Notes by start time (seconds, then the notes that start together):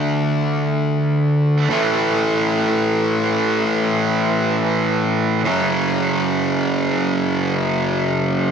Already playing: D3 A3 D4
1.70 A2 E3 A3
5.45 F#2 C#3 F#3